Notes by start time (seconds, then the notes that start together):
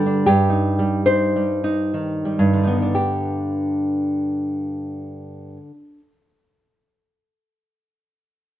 Already playing: G2 D3 G3 G4 A4
0.06 D4
0.26 G2 G4
0.50 D#4
0.79 G3
1.06 D#4 C5
1.36 G3
1.64 D#4
1.94 D#3
2.25 G3
2.39 G2
2.53 D3
2.64 B3 D#4
2.82 D4
2.95 G4